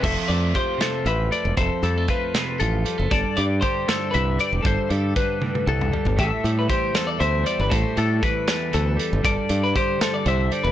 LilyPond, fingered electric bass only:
\new Staff \with { instrumentName = "Fingered electric bass" } { \clef bass \time 6/8 \key f \lydian \tempo 4. = 78 f,,16 r16 f,8 r4 a,,8 r16 e,,16 | f,,16 r16 f,8 r4 a,,8 r16 fis,,16 | g,,16 r16 g,8 r4 c,8 r16 e,,16 | g,,16 r16 g,8 r4 c,8 r16 g,,16 |
a,,16 r16 a,8 r4 d,8 r16 g,,16 | a,,16 r16 a,8 r4 d,8 r16 g,,16 | g,,16 r16 g,8 r4 c,8 r16 e,,16 | }